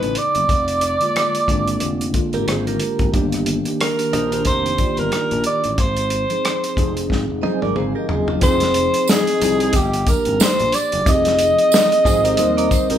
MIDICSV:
0, 0, Header, 1, 8, 480
1, 0, Start_track
1, 0, Tempo, 660793
1, 358, Time_signature, 4, 2, 24, 8
1, 9429, End_track
2, 0, Start_track
2, 0, Title_t, "Vibraphone"
2, 0, Program_c, 0, 11
2, 6606, Note_on_c, 0, 75, 47
2, 7292, Note_off_c, 0, 75, 0
2, 8759, Note_on_c, 0, 72, 58
2, 9207, Note_off_c, 0, 72, 0
2, 9429, End_track
3, 0, Start_track
3, 0, Title_t, "Alto saxophone"
3, 0, Program_c, 1, 65
3, 0, Note_on_c, 1, 71, 82
3, 129, Note_on_c, 1, 74, 104
3, 139, Note_off_c, 1, 71, 0
3, 1565, Note_off_c, 1, 74, 0
3, 2764, Note_on_c, 1, 70, 80
3, 3213, Note_off_c, 1, 70, 0
3, 3245, Note_on_c, 1, 72, 88
3, 3625, Note_on_c, 1, 70, 81
3, 3636, Note_off_c, 1, 72, 0
3, 3963, Note_off_c, 1, 70, 0
3, 3969, Note_on_c, 1, 74, 97
3, 4163, Note_off_c, 1, 74, 0
3, 4163, Note_on_c, 1, 74, 59
3, 4212, Note_on_c, 1, 72, 88
3, 4223, Note_off_c, 1, 74, 0
3, 5166, Note_off_c, 1, 72, 0
3, 6125, Note_on_c, 1, 72, 96
3, 6611, Note_on_c, 1, 68, 93
3, 6622, Note_off_c, 1, 72, 0
3, 7088, Note_on_c, 1, 67, 89
3, 7099, Note_off_c, 1, 68, 0
3, 7330, Note_on_c, 1, 70, 85
3, 7340, Note_off_c, 1, 67, 0
3, 7573, Note_on_c, 1, 72, 101
3, 7584, Note_off_c, 1, 70, 0
3, 7807, Note_on_c, 1, 74, 106
3, 7818, Note_off_c, 1, 72, 0
3, 8042, Note_off_c, 1, 74, 0
3, 8056, Note_on_c, 1, 75, 118
3, 9429, Note_off_c, 1, 75, 0
3, 9429, End_track
4, 0, Start_track
4, 0, Title_t, "Clean electric guitar"
4, 0, Program_c, 2, 27
4, 1699, Note_on_c, 2, 70, 60
4, 1704, Note_on_c, 2, 67, 57
4, 1794, Note_off_c, 2, 70, 0
4, 1797, Note_off_c, 2, 67, 0
4, 1803, Note_on_c, 2, 72, 69
4, 1808, Note_on_c, 2, 68, 55
4, 1934, Note_off_c, 2, 72, 0
4, 1936, Note_off_c, 2, 68, 0
4, 1941, Note_on_c, 2, 70, 64
4, 1947, Note_on_c, 2, 67, 56
4, 2264, Note_off_c, 2, 70, 0
4, 2267, Note_off_c, 2, 67, 0
4, 3001, Note_on_c, 2, 75, 55
4, 3006, Note_on_c, 2, 72, 54
4, 3130, Note_off_c, 2, 72, 0
4, 3133, Note_off_c, 2, 75, 0
4, 3138, Note_on_c, 2, 72, 59
4, 3235, Note_off_c, 2, 72, 0
4, 3241, Note_on_c, 2, 70, 69
4, 3245, Note_on_c, 2, 67, 53
4, 3372, Note_off_c, 2, 67, 0
4, 3373, Note_off_c, 2, 70, 0
4, 3380, Note_on_c, 2, 67, 57
4, 3384, Note_on_c, 2, 63, 45
4, 4071, Note_off_c, 2, 67, 0
4, 4073, Note_off_c, 2, 63, 0
4, 5398, Note_on_c, 2, 75, 62
4, 5402, Note_on_c, 2, 72, 54
4, 5531, Note_off_c, 2, 75, 0
4, 5533, Note_off_c, 2, 72, 0
4, 5538, Note_on_c, 2, 70, 49
4, 5539, Note_on_c, 2, 74, 59
4, 5633, Note_off_c, 2, 74, 0
4, 5635, Note_off_c, 2, 70, 0
4, 5639, Note_on_c, 2, 68, 55
4, 5642, Note_on_c, 2, 72, 66
4, 5771, Note_off_c, 2, 72, 0
4, 5772, Note_off_c, 2, 68, 0
4, 5776, Note_on_c, 2, 70, 62
4, 5780, Note_on_c, 2, 67, 55
4, 5873, Note_off_c, 2, 70, 0
4, 5875, Note_off_c, 2, 67, 0
4, 5878, Note_on_c, 2, 68, 59
4, 5883, Note_on_c, 2, 65, 52
4, 6006, Note_off_c, 2, 65, 0
4, 6011, Note_off_c, 2, 68, 0
4, 6015, Note_on_c, 2, 65, 57
4, 6019, Note_on_c, 2, 62, 44
4, 6244, Note_off_c, 2, 65, 0
4, 6246, Note_off_c, 2, 62, 0
4, 8757, Note_on_c, 2, 65, 57
4, 8758, Note_on_c, 2, 68, 59
4, 8887, Note_off_c, 2, 68, 0
4, 8889, Note_off_c, 2, 65, 0
4, 8892, Note_on_c, 2, 70, 64
4, 8897, Note_on_c, 2, 67, 56
4, 8988, Note_off_c, 2, 70, 0
4, 8991, Note_off_c, 2, 67, 0
4, 8995, Note_on_c, 2, 72, 81
4, 9127, Note_off_c, 2, 72, 0
4, 9133, Note_on_c, 2, 74, 74
4, 9138, Note_on_c, 2, 70, 68
4, 9229, Note_off_c, 2, 74, 0
4, 9231, Note_off_c, 2, 70, 0
4, 9235, Note_on_c, 2, 72, 81
4, 9367, Note_off_c, 2, 72, 0
4, 9373, Note_on_c, 2, 70, 67
4, 9377, Note_on_c, 2, 67, 59
4, 9429, Note_off_c, 2, 67, 0
4, 9429, Note_off_c, 2, 70, 0
4, 9429, End_track
5, 0, Start_track
5, 0, Title_t, "Tine electric piano"
5, 0, Program_c, 3, 4
5, 0, Note_on_c, 3, 49, 60
5, 0, Note_on_c, 3, 57, 55
5, 0, Note_on_c, 3, 59, 61
5, 0, Note_on_c, 3, 63, 77
5, 36, Control_c, 3, 64, 127
5, 271, Note_off_c, 3, 49, 0
5, 274, Note_off_c, 3, 57, 0
5, 277, Note_off_c, 3, 59, 0
5, 282, Note_off_c, 3, 63, 0
5, 366, Control_c, 3, 64, 0
5, 506, Control_c, 3, 64, 127
5, 725, Note_on_c, 3, 50, 70
5, 732, Note_on_c, 3, 56, 76
5, 738, Note_on_c, 3, 58, 69
5, 746, Note_on_c, 3, 65, 73
5, 1011, Note_off_c, 3, 50, 0
5, 1015, Note_off_c, 3, 56, 0
5, 1018, Note_off_c, 3, 58, 0
5, 1021, Note_off_c, 3, 65, 0
5, 1069, Note_on_c, 3, 50, 78
5, 1076, Note_on_c, 3, 56, 67
5, 1082, Note_on_c, 3, 58, 79
5, 1090, Note_on_c, 3, 62, 94
5, 1473, Note_off_c, 3, 50, 0
5, 1476, Note_off_c, 3, 56, 0
5, 1479, Note_off_c, 3, 58, 0
5, 1483, Note_off_c, 3, 62, 0
5, 1546, Note_on_c, 3, 50, 78
5, 1554, Note_on_c, 3, 56, 64
5, 1561, Note_on_c, 3, 58, 70
5, 1568, Note_on_c, 3, 65, 83
5, 2142, Note_off_c, 3, 50, 0
5, 2146, Note_off_c, 3, 56, 0
5, 2150, Note_off_c, 3, 58, 0
5, 2153, Note_off_c, 3, 65, 0
5, 2266, Note_on_c, 3, 51, 118
5, 2274, Note_on_c, 3, 58, 101
5, 2279, Note_on_c, 3, 62, 105
5, 2288, Note_on_c, 3, 67, 124
5, 2289, Control_c, 3, 64, 0
5, 2397, Control_c, 3, 64, 127
5, 2568, Note_off_c, 3, 51, 0
5, 2572, Note_off_c, 3, 58, 0
5, 2574, Note_off_c, 3, 62, 0
5, 2579, Note_off_c, 3, 67, 0
5, 2650, Note_on_c, 3, 51, 65
5, 2657, Note_on_c, 3, 58, 53
5, 2665, Note_on_c, 3, 62, 54
5, 2671, Note_on_c, 3, 67, 69
5, 2934, Note_off_c, 3, 51, 0
5, 2938, Note_off_c, 3, 58, 0
5, 2942, Note_off_c, 3, 62, 0
5, 2945, Note_off_c, 3, 67, 0
5, 2986, Note_on_c, 3, 51, 72
5, 2994, Note_on_c, 3, 58, 63
5, 3001, Note_on_c, 3, 62, 63
5, 3008, Note_on_c, 3, 67, 74
5, 3392, Note_off_c, 3, 51, 0
5, 3395, Note_off_c, 3, 58, 0
5, 3399, Note_off_c, 3, 62, 0
5, 3403, Note_off_c, 3, 67, 0
5, 3466, Note_on_c, 3, 51, 63
5, 3473, Note_on_c, 3, 58, 56
5, 3479, Note_on_c, 3, 74, 53
5, 3487, Note_on_c, 3, 65, 56
5, 3535, Note_on_c, 3, 67, 65
5, 3538, Note_off_c, 3, 65, 0
5, 4193, Note_off_c, 3, 51, 0
5, 4197, Note_off_c, 3, 58, 0
5, 4199, Note_off_c, 3, 74, 0
5, 4210, Control_c, 3, 64, 0
5, 4228, Note_off_c, 3, 67, 0
5, 4347, Control_c, 3, 64, 127
5, 4567, Note_on_c, 3, 53, 67
5, 4572, Note_on_c, 3, 60, 58
5, 4582, Note_on_c, 3, 63, 62
5, 4589, Note_on_c, 3, 68, 60
5, 4852, Note_off_c, 3, 53, 0
5, 4855, Note_off_c, 3, 60, 0
5, 4860, Note_off_c, 3, 63, 0
5, 4863, Note_off_c, 3, 68, 0
5, 4908, Note_on_c, 3, 53, 79
5, 4914, Note_on_c, 3, 60, 71
5, 4919, Note_on_c, 3, 63, 77
5, 4928, Note_on_c, 3, 68, 87
5, 5312, Note_off_c, 3, 53, 0
5, 5315, Note_off_c, 3, 60, 0
5, 5318, Note_off_c, 3, 63, 0
5, 5322, Note_off_c, 3, 68, 0
5, 5386, Note_on_c, 3, 53, 76
5, 5392, Note_on_c, 3, 60, 66
5, 5394, Note_on_c, 3, 82, 66
5, 5398, Note_on_c, 3, 63, 72
5, 5405, Note_on_c, 3, 68, 86
5, 5471, Note_off_c, 3, 82, 0
5, 5479, Note_on_c, 3, 80, 59
5, 5628, Note_off_c, 3, 80, 0
5, 5636, Note_on_c, 3, 77, 59
5, 5786, Note_off_c, 3, 77, 0
5, 5800, Note_on_c, 3, 75, 65
5, 5948, Note_off_c, 3, 75, 0
5, 5958, Note_on_c, 3, 75, 60
5, 5981, Note_off_c, 3, 53, 0
5, 5984, Note_off_c, 3, 60, 0
5, 5987, Note_off_c, 3, 63, 0
5, 5991, Note_off_c, 3, 68, 0
5, 6106, Note_on_c, 3, 53, 96
5, 6107, Note_off_c, 3, 75, 0
5, 6114, Note_on_c, 3, 60, 98
5, 6121, Note_on_c, 3, 63, 91
5, 6128, Control_c, 3, 64, 0
5, 6130, Note_on_c, 3, 68, 116
5, 6234, Control_c, 3, 64, 127
5, 6701, Note_off_c, 3, 53, 0
5, 6705, Note_off_c, 3, 60, 0
5, 6709, Note_off_c, 3, 63, 0
5, 6713, Note_off_c, 3, 68, 0
5, 6827, Note_on_c, 3, 53, 84
5, 6832, Note_on_c, 3, 60, 69
5, 6841, Note_on_c, 3, 63, 67
5, 6846, Note_on_c, 3, 68, 79
5, 7072, Note_off_c, 3, 53, 0
5, 7074, Note_off_c, 3, 60, 0
5, 7079, Note_off_c, 3, 63, 0
5, 7081, Note_off_c, 3, 68, 0
5, 7087, Control_c, 3, 64, 0
5, 7198, Control_c, 3, 64, 127
5, 7305, Note_on_c, 3, 53, 70
5, 7314, Note_on_c, 3, 58, 54
5, 7319, Note_on_c, 3, 62, 62
5, 7326, Note_on_c, 3, 67, 75
5, 7899, Note_off_c, 3, 53, 0
5, 7904, Note_off_c, 3, 58, 0
5, 7906, Note_off_c, 3, 62, 0
5, 7910, Note_off_c, 3, 67, 0
5, 8026, Note_on_c, 3, 53, 101
5, 8031, Note_on_c, 3, 60, 95
5, 8040, Note_on_c, 3, 63, 88
5, 8045, Control_c, 3, 64, 0
5, 8046, Note_on_c, 3, 67, 90
5, 8092, Note_on_c, 3, 68, 113
5, 8096, Note_off_c, 3, 67, 0
5, 8158, Control_c, 3, 64, 127
5, 8619, Note_off_c, 3, 53, 0
5, 8622, Note_off_c, 3, 60, 0
5, 8626, Note_off_c, 3, 63, 0
5, 8652, Note_off_c, 3, 68, 0
5, 8746, Note_on_c, 3, 53, 93
5, 8751, Note_on_c, 3, 60, 87
5, 8759, Note_on_c, 3, 63, 81
5, 8767, Note_on_c, 3, 68, 96
5, 8982, Note_off_c, 3, 60, 0
5, 8984, Note_on_c, 3, 55, 98
5, 8989, Note_off_c, 3, 63, 0
5, 8990, Note_off_c, 3, 53, 0
5, 8991, Note_on_c, 3, 60, 76
5, 8998, Note_on_c, 3, 63, 91
5, 9000, Note_off_c, 3, 68, 0
5, 9004, Control_c, 3, 64, 0
5, 9004, Note_on_c, 3, 70, 95
5, 9147, Control_c, 3, 64, 127
5, 9429, Note_off_c, 3, 55, 0
5, 9429, Note_off_c, 3, 60, 0
5, 9429, Note_off_c, 3, 63, 0
5, 9429, Note_off_c, 3, 70, 0
5, 9429, End_track
6, 0, Start_track
6, 0, Title_t, "Fingered electric bass"
6, 0, Program_c, 4, 33
6, 18, Note_on_c, 4, 33, 80
6, 106, Note_off_c, 4, 33, 0
6, 259, Note_on_c, 4, 30, 71
6, 347, Note_off_c, 4, 30, 0
6, 357, Note_on_c, 4, 29, 83
6, 692, Note_off_c, 4, 29, 0
6, 1078, Note_on_c, 4, 32, 81
6, 1290, Note_off_c, 4, 32, 0
6, 1322, Note_on_c, 4, 29, 71
6, 1532, Note_off_c, 4, 29, 0
6, 1701, Note_on_c, 4, 32, 70
6, 1789, Note_off_c, 4, 32, 0
6, 1802, Note_on_c, 4, 32, 73
6, 2012, Note_off_c, 4, 32, 0
6, 2176, Note_on_c, 4, 32, 72
6, 2266, Note_off_c, 4, 32, 0
6, 2281, Note_on_c, 4, 31, 86
6, 2614, Note_off_c, 4, 31, 0
6, 3006, Note_on_c, 4, 34, 88
6, 3214, Note_off_c, 4, 34, 0
6, 3239, Note_on_c, 4, 29, 79
6, 3451, Note_off_c, 4, 29, 0
6, 3624, Note_on_c, 4, 31, 74
6, 3711, Note_off_c, 4, 31, 0
6, 3864, Note_on_c, 4, 34, 86
6, 3951, Note_off_c, 4, 34, 0
6, 4106, Note_on_c, 4, 33, 63
6, 4192, Note_off_c, 4, 33, 0
6, 4201, Note_on_c, 4, 32, 91
6, 4534, Note_off_c, 4, 32, 0
6, 4919, Note_on_c, 4, 29, 86
6, 5131, Note_off_c, 4, 29, 0
6, 5159, Note_on_c, 4, 32, 78
6, 5282, Note_off_c, 4, 32, 0
6, 5302, Note_on_c, 4, 29, 73
6, 5389, Note_off_c, 4, 29, 0
6, 5542, Note_on_c, 4, 32, 73
6, 5629, Note_off_c, 4, 32, 0
6, 5641, Note_on_c, 4, 32, 72
6, 5763, Note_off_c, 4, 32, 0
6, 5883, Note_on_c, 4, 30, 80
6, 6092, Note_off_c, 4, 30, 0
6, 6118, Note_on_c, 4, 29, 86
6, 6452, Note_off_c, 4, 29, 0
6, 6842, Note_on_c, 4, 36, 104
6, 7051, Note_off_c, 4, 36, 0
6, 7074, Note_on_c, 4, 31, 104
6, 7286, Note_off_c, 4, 31, 0
6, 7461, Note_on_c, 4, 32, 84
6, 7548, Note_off_c, 4, 32, 0
6, 7703, Note_on_c, 4, 34, 86
6, 7788, Note_off_c, 4, 34, 0
6, 7942, Note_on_c, 4, 30, 80
6, 8028, Note_off_c, 4, 30, 0
6, 8039, Note_on_c, 4, 29, 88
6, 8371, Note_off_c, 4, 29, 0
6, 8756, Note_on_c, 4, 32, 93
6, 8966, Note_off_c, 4, 32, 0
6, 9001, Note_on_c, 4, 39, 86
6, 9209, Note_off_c, 4, 39, 0
6, 9380, Note_on_c, 4, 36, 77
6, 9429, Note_off_c, 4, 36, 0
6, 9429, End_track
7, 0, Start_track
7, 0, Title_t, "Muted fingered electric bass strokes"
7, 7563, Note_on_c, 9, 29, 44
7, 7635, Note_off_c, 9, 29, 0
7, 9429, End_track
8, 0, Start_track
8, 0, Title_t, "Drums"
8, 19, Note_on_c, 9, 42, 35
8, 92, Note_off_c, 9, 42, 0
8, 110, Note_on_c, 9, 42, 72
8, 183, Note_off_c, 9, 42, 0
8, 252, Note_on_c, 9, 42, 40
8, 325, Note_off_c, 9, 42, 0
8, 356, Note_on_c, 9, 36, 101
8, 357, Note_on_c, 9, 42, 75
8, 429, Note_off_c, 9, 36, 0
8, 430, Note_off_c, 9, 42, 0
8, 493, Note_on_c, 9, 42, 52
8, 565, Note_off_c, 9, 42, 0
8, 590, Note_on_c, 9, 42, 65
8, 663, Note_off_c, 9, 42, 0
8, 731, Note_on_c, 9, 42, 41
8, 804, Note_off_c, 9, 42, 0
8, 842, Note_on_c, 9, 42, 78
8, 847, Note_on_c, 9, 37, 111
8, 915, Note_off_c, 9, 42, 0
8, 920, Note_off_c, 9, 37, 0
8, 979, Note_on_c, 9, 42, 47
8, 1051, Note_off_c, 9, 42, 0
8, 1075, Note_on_c, 9, 36, 78
8, 1081, Note_on_c, 9, 42, 73
8, 1148, Note_off_c, 9, 36, 0
8, 1154, Note_off_c, 9, 42, 0
8, 1217, Note_on_c, 9, 42, 46
8, 1290, Note_off_c, 9, 42, 0
8, 1310, Note_on_c, 9, 42, 73
8, 1383, Note_off_c, 9, 42, 0
8, 1460, Note_on_c, 9, 42, 46
8, 1533, Note_off_c, 9, 42, 0
8, 1554, Note_on_c, 9, 42, 69
8, 1556, Note_on_c, 9, 36, 80
8, 1626, Note_off_c, 9, 42, 0
8, 1629, Note_off_c, 9, 36, 0
8, 1692, Note_on_c, 9, 42, 39
8, 1764, Note_off_c, 9, 42, 0
8, 1799, Note_on_c, 9, 42, 74
8, 1806, Note_on_c, 9, 37, 90
8, 1872, Note_off_c, 9, 42, 0
8, 1878, Note_off_c, 9, 37, 0
8, 1940, Note_on_c, 9, 42, 35
8, 2013, Note_off_c, 9, 42, 0
8, 2031, Note_on_c, 9, 42, 70
8, 2103, Note_off_c, 9, 42, 0
8, 2173, Note_on_c, 9, 42, 39
8, 2175, Note_on_c, 9, 36, 89
8, 2245, Note_off_c, 9, 42, 0
8, 2248, Note_off_c, 9, 36, 0
8, 2278, Note_on_c, 9, 42, 72
8, 2279, Note_on_c, 9, 36, 99
8, 2350, Note_off_c, 9, 42, 0
8, 2352, Note_off_c, 9, 36, 0
8, 2415, Note_on_c, 9, 42, 49
8, 2428, Note_on_c, 9, 37, 34
8, 2487, Note_off_c, 9, 42, 0
8, 2501, Note_off_c, 9, 37, 0
8, 2515, Note_on_c, 9, 42, 71
8, 2587, Note_off_c, 9, 42, 0
8, 2654, Note_on_c, 9, 42, 43
8, 2727, Note_off_c, 9, 42, 0
8, 2764, Note_on_c, 9, 42, 88
8, 2769, Note_on_c, 9, 37, 121
8, 2837, Note_off_c, 9, 42, 0
8, 2842, Note_off_c, 9, 37, 0
8, 2897, Note_on_c, 9, 42, 49
8, 2970, Note_off_c, 9, 42, 0
8, 3002, Note_on_c, 9, 42, 72
8, 3075, Note_off_c, 9, 42, 0
8, 3139, Note_on_c, 9, 42, 46
8, 3212, Note_off_c, 9, 42, 0
8, 3231, Note_on_c, 9, 42, 78
8, 3237, Note_on_c, 9, 36, 72
8, 3304, Note_off_c, 9, 42, 0
8, 3309, Note_off_c, 9, 36, 0
8, 3383, Note_on_c, 9, 42, 41
8, 3456, Note_off_c, 9, 42, 0
8, 3475, Note_on_c, 9, 42, 61
8, 3477, Note_on_c, 9, 36, 87
8, 3547, Note_off_c, 9, 42, 0
8, 3550, Note_off_c, 9, 36, 0
8, 3612, Note_on_c, 9, 42, 40
8, 3684, Note_off_c, 9, 42, 0
8, 3718, Note_on_c, 9, 42, 73
8, 3725, Note_on_c, 9, 37, 83
8, 3791, Note_off_c, 9, 42, 0
8, 3797, Note_off_c, 9, 37, 0
8, 3858, Note_on_c, 9, 42, 37
8, 3931, Note_off_c, 9, 42, 0
8, 3950, Note_on_c, 9, 42, 65
8, 4022, Note_off_c, 9, 42, 0
8, 4095, Note_on_c, 9, 42, 41
8, 4168, Note_off_c, 9, 42, 0
8, 4198, Note_on_c, 9, 42, 80
8, 4199, Note_on_c, 9, 36, 96
8, 4271, Note_off_c, 9, 42, 0
8, 4272, Note_off_c, 9, 36, 0
8, 4334, Note_on_c, 9, 42, 52
8, 4406, Note_off_c, 9, 42, 0
8, 4433, Note_on_c, 9, 42, 65
8, 4506, Note_off_c, 9, 42, 0
8, 4576, Note_on_c, 9, 42, 41
8, 4649, Note_off_c, 9, 42, 0
8, 4684, Note_on_c, 9, 42, 87
8, 4689, Note_on_c, 9, 37, 115
8, 4757, Note_off_c, 9, 42, 0
8, 4762, Note_off_c, 9, 37, 0
8, 4821, Note_on_c, 9, 42, 47
8, 4894, Note_off_c, 9, 42, 0
8, 4917, Note_on_c, 9, 36, 86
8, 4924, Note_on_c, 9, 42, 69
8, 4990, Note_off_c, 9, 36, 0
8, 4997, Note_off_c, 9, 42, 0
8, 5061, Note_on_c, 9, 42, 44
8, 5134, Note_off_c, 9, 42, 0
8, 5157, Note_on_c, 9, 36, 65
8, 5171, Note_on_c, 9, 38, 45
8, 5229, Note_off_c, 9, 36, 0
8, 5244, Note_off_c, 9, 38, 0
8, 5399, Note_on_c, 9, 48, 63
8, 5471, Note_off_c, 9, 48, 0
8, 5537, Note_on_c, 9, 48, 59
8, 5610, Note_off_c, 9, 48, 0
8, 5636, Note_on_c, 9, 47, 72
8, 5708, Note_off_c, 9, 47, 0
8, 5876, Note_on_c, 9, 43, 85
8, 5948, Note_off_c, 9, 43, 0
8, 6013, Note_on_c, 9, 43, 69
8, 6086, Note_off_c, 9, 43, 0
8, 6112, Note_on_c, 9, 42, 82
8, 6116, Note_on_c, 9, 36, 111
8, 6120, Note_on_c, 9, 54, 45
8, 6184, Note_off_c, 9, 42, 0
8, 6189, Note_off_c, 9, 36, 0
8, 6193, Note_off_c, 9, 54, 0
8, 6249, Note_on_c, 9, 42, 53
8, 6263, Note_on_c, 9, 38, 40
8, 6322, Note_off_c, 9, 42, 0
8, 6335, Note_off_c, 9, 38, 0
8, 6350, Note_on_c, 9, 42, 78
8, 6423, Note_off_c, 9, 42, 0
8, 6493, Note_on_c, 9, 42, 45
8, 6565, Note_off_c, 9, 42, 0
8, 6592, Note_on_c, 9, 54, 85
8, 6606, Note_on_c, 9, 38, 125
8, 6665, Note_off_c, 9, 54, 0
8, 6679, Note_off_c, 9, 38, 0
8, 6736, Note_on_c, 9, 42, 52
8, 6809, Note_off_c, 9, 42, 0
8, 6839, Note_on_c, 9, 42, 85
8, 6842, Note_on_c, 9, 54, 52
8, 6912, Note_off_c, 9, 42, 0
8, 6915, Note_off_c, 9, 54, 0
8, 6975, Note_on_c, 9, 42, 48
8, 7048, Note_off_c, 9, 42, 0
8, 7066, Note_on_c, 9, 42, 88
8, 7072, Note_on_c, 9, 36, 89
8, 7087, Note_on_c, 9, 54, 32
8, 7139, Note_off_c, 9, 42, 0
8, 7145, Note_off_c, 9, 36, 0
8, 7160, Note_off_c, 9, 54, 0
8, 7217, Note_on_c, 9, 42, 52
8, 7289, Note_off_c, 9, 42, 0
8, 7312, Note_on_c, 9, 42, 66
8, 7313, Note_on_c, 9, 36, 102
8, 7321, Note_on_c, 9, 54, 44
8, 7384, Note_off_c, 9, 42, 0
8, 7386, Note_off_c, 9, 36, 0
8, 7394, Note_off_c, 9, 54, 0
8, 7448, Note_on_c, 9, 42, 41
8, 7520, Note_off_c, 9, 42, 0
8, 7554, Note_on_c, 9, 54, 96
8, 7562, Note_on_c, 9, 38, 115
8, 7627, Note_off_c, 9, 54, 0
8, 7635, Note_off_c, 9, 38, 0
8, 7696, Note_on_c, 9, 42, 39
8, 7769, Note_off_c, 9, 42, 0
8, 7790, Note_on_c, 9, 42, 75
8, 7802, Note_on_c, 9, 54, 47
8, 7863, Note_off_c, 9, 42, 0
8, 7875, Note_off_c, 9, 54, 0
8, 7934, Note_on_c, 9, 42, 47
8, 8006, Note_off_c, 9, 42, 0
8, 8036, Note_on_c, 9, 36, 120
8, 8037, Note_on_c, 9, 42, 81
8, 8040, Note_on_c, 9, 54, 50
8, 8109, Note_off_c, 9, 36, 0
8, 8109, Note_off_c, 9, 42, 0
8, 8113, Note_off_c, 9, 54, 0
8, 8172, Note_on_c, 9, 42, 57
8, 8186, Note_on_c, 9, 38, 37
8, 8245, Note_off_c, 9, 42, 0
8, 8259, Note_off_c, 9, 38, 0
8, 8271, Note_on_c, 9, 42, 82
8, 8275, Note_on_c, 9, 54, 30
8, 8344, Note_off_c, 9, 42, 0
8, 8348, Note_off_c, 9, 54, 0
8, 8415, Note_on_c, 9, 42, 41
8, 8488, Note_off_c, 9, 42, 0
8, 8512, Note_on_c, 9, 54, 79
8, 8529, Note_on_c, 9, 38, 118
8, 8584, Note_off_c, 9, 54, 0
8, 8601, Note_off_c, 9, 38, 0
8, 8659, Note_on_c, 9, 42, 51
8, 8732, Note_off_c, 9, 42, 0
8, 8754, Note_on_c, 9, 36, 91
8, 8762, Note_on_c, 9, 42, 72
8, 8766, Note_on_c, 9, 54, 54
8, 8827, Note_off_c, 9, 36, 0
8, 8834, Note_off_c, 9, 42, 0
8, 8839, Note_off_c, 9, 54, 0
8, 8898, Note_on_c, 9, 42, 54
8, 8970, Note_off_c, 9, 42, 0
8, 8987, Note_on_c, 9, 42, 86
8, 9002, Note_on_c, 9, 54, 35
8, 9060, Note_off_c, 9, 42, 0
8, 9074, Note_off_c, 9, 54, 0
8, 9139, Note_on_c, 9, 42, 50
8, 9211, Note_off_c, 9, 42, 0
8, 9233, Note_on_c, 9, 36, 95
8, 9234, Note_on_c, 9, 42, 76
8, 9238, Note_on_c, 9, 54, 48
8, 9306, Note_off_c, 9, 36, 0
8, 9306, Note_off_c, 9, 42, 0
8, 9311, Note_off_c, 9, 54, 0
8, 9370, Note_on_c, 9, 42, 48
8, 9429, Note_off_c, 9, 42, 0
8, 9429, End_track
0, 0, End_of_file